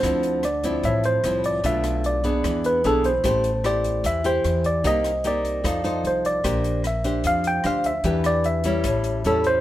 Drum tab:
HH |xxxxxxxx|xxxxxxxx|xxxxxxxx|xxxxxxxx|
SD |r-r---r-|-r--r---|r-r---r-|-r--r---|
BD |o--oo--o|o--oo--o|o--oo--o|o--oo--o|

HH |xxxxxxxx|xxxxxxxx|
SD |r-r---r-|-r--r---|
BD |o--oo--o|o--oo--o|